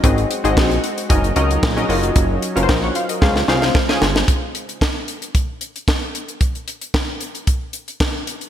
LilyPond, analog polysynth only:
\new Staff \with { instrumentName = "Analog polysynth" } { \time 4/4 \key des \major \tempo 4 = 113 << { r1 | r4 <bes' ees''>16 <des'' ges''>16 <c'' f''>16 <bes' ees''>8 r4. r16 | r1 | r1 | } \\ { <c' ees' ges' aes' ees''>8 r16 <c' ees' ges' aes' ees''>8. r8 <des' ees' ges' bes' ees''>16 r16 <des' ees' ges' bes' ees''>8 r16 <des' ees' ges' bes' ees''>16 <des' f' ges' bes' ees''>8~ | <des' f' ges' bes' ees''>8 r16 <des' f' ges' bes' ces'' c''>8. r8 <des' f' aes' c'' f''>16 r16 <des' f' aes' c'' f''>8 r16 <des' f' aes' c'' aes''>8 r16 | r1 | r1 | } >> }